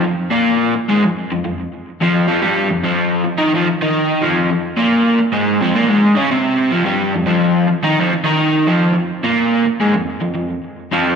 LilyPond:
\new Staff \with { instrumentName = "Overdriven electric guitar" } { \clef bass \time 4/4 \key f \minor \tempo 4 = 108 f,8 <bes, bes>8. r16 <aes, aes>16 f,8 f,16 f,8 r8 <f, f>8 | <f, f>16 <g, g>8 f,16 <f, f>8. r16 <ees ees'>16 <f, f>16 r16 <ees ees'>8. <f, f>8 | f,8 <bes, bes>8. r16 <aes, aes>8 <f, f>16 <bes, bes>16 <aes, aes>8 <des des'>16 <c c'>8. | <f, f>16 <g, g>8 f,16 <f, f>8. r16 <ees ees'>16 <f, f>16 r16 <ees ees'>8. <f, f>8 |
f,8 <bes, bes>8. r16 <aes, aes>16 f,8 f,16 f,8 r8 <f, f>8 | }